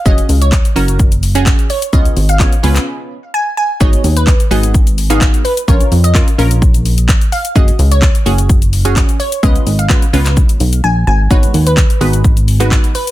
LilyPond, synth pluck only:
\new Staff \with { instrumentName = "Synth pluck" } { \time 4/4 \key gis \dorian \tempo 4 = 128 dis''8 r16 cis''8. r2 cis''16 r16 | dis''8 r16 eis''8. r4. gis''16 r16 gis''16 r16 | cis''8 r16 b'8. r2 b'16 r16 | cis''8 r16 dis''8. r2 eis''16 r16 |
dis''8 r16 cis''8. r2 cis''16 r16 | dis''8 r16 eis''8. r4. gis''16 r16 gis''16 r16 | cis''8 r16 b'8. r2 b'16 r16 | }